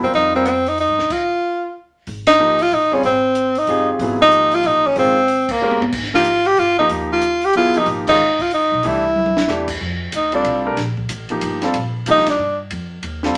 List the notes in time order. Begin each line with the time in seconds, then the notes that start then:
0.01 F#2 G3 C4 F4 A#4
0.13 F2 D#4, open hi-hat
0.34 G3 C4 F4 A#4
0.45 B3 C4, closed hi-hat
0.66 D#4, open hi-hat
0.78 D#4, open hi-hat
0.89 G2
0.99 D#2, snare
1.10 F4, kick, crash
2.07 G#1, open hi-hat
2.27 D#4, snare, ride
2.39 F3 A#3 D#4 G4
2.59 F4, open hi-hat
2.71 A1 D#4, open hi-hat
2.92 G3 C4 C#4 F4 G#4
3.03 G#1 C4, open hi-hat
3.35 closed hi-hat
3.55 D#4, open hi-hat
3.67 G1 C4 F4 G4 G#4, open hi-hat
3.99 G#1 F#3 B3 E4 G#4, open hi-hat
4.21 F3 A#3 D#4 G4
4.31 closed hi-hat
4.51 F4, open hi-hat
4.63 A1 D#4, open hi-hat
4.87 C#4
4.96 G#1 D#3 G#3 C4 C#4 F4, open hi-hat
5.28 open hi-hat
5.49 A#3, kick, crash
5.61 G#3 C#4 G4 A#4
5.71 high tom
5.81 G1, high tom
5.92 G#1, kick, crash
6.03 snare
6.14 F3 A#3 D#4 F4 G4, snare
6.24 closed hi-hat
6.45 G4, open hi-hat
6.57 G1 F4, open hi-hat
6.79 F3 A#3 D#4 G4
6.89 D#2, open hi-hat
7.12 F4
7.21 closed hi-hat
7.41 G4, open hi-hat
7.53 F#3 B3 E4 F4 G#4, closed hi-hat
7.74 F3 A#3 D#4 G4, open hi-hat
7.86 G#1, open hi-hat
8.07 D#3 G#3 C#4 D#4 F4, kick, crash
8.39 F4, kick, open hi-hat
8.51 D#4, open hi-hat
8.72 B1
8.83 C2 E3 A3 D4 E4 G4, open hi-hat
9.16 mid tom
9.26 mid tom
9.37 snare
9.48 E2 E3 A3 D4 G4, snare
9.68 kick, crash
9.81 F2
10.12 D2 D#4, hi-hat pedal, ride
10.32 G3 C4 D4 F4 A4, ride
10.44 C2, ride
10.66 A3 D4 G4 A#4
10.77 A#1, snare, ride
10.97 kick
11.09 A1, hi-hat pedal, ride
11.29 F3 A#3 D#4 G4, ride
11.41 G1, hi-hat pedal, ride
11.62 G3 C4 F4 A4, snare, ride
11.74 A#1, ride
12.06 C2 F3 A#3 D#4 G4, hi-hat pedal, ride
12.11 D#4
12.17 snare
12.26 D4, snare, ride
12.39 G2
12.71 F2, ride
13.03 D#2, ride
13.23 G3 C4 F4 A4, snare